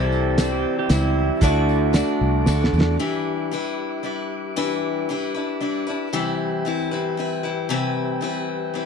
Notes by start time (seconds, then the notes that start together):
Already playing: C2 C3 E3 G3 C4 E4 G4 C5 G5 E6
0.00 A4
0.12 tambourine
0.38 G3 C4 E4 C5, snare, closed hi-hat, tambourine
0.52 G4
0.79 G4
0.89 C#2 G3 C4 E4 C5, snare, closed hi-hat, tambourine
1.41 D2 D3 A3 D4 F#4 A4 D5 F#5 D6, kick, closed hi-hat, tambourine
1.69 tambourine
1.93 A3 D4 F#4 D5, snare, closed hi-hat, tambourine
2.07 tambourine
2.21 C2
2.46 D2 A3 D4 F#4 D5, snare, tambourine
2.61 snare, tambourine
2.73 E2, tambourine
2.81 snare
2.99 E3 G3 D4 E4 G4 B4 E5 D6
3.51 G3 D4 E4 B4
4.03 G3 D4 E4 B4
4.56 E3 G3 D4 E4 B4
5.09 G3 D4 E4 B4
5.34 D4 E4 B4
5.60 G3 D4 E4 B4
5.87 D4 E4 B4
6.12 C3 E3 G3 C4 E4 G4 B4 E5 G5
6.65 G3 C4 E4 B4
6.91 G3 C4 E4 B4
7.17 G3 C4 E4 B4
7.43 G3 C4 E4 B4
7.69 C3 E3 G3 C4 E4 B4
8.21 G3 C4 E4 B4
8.74 G3 C4 E4 B4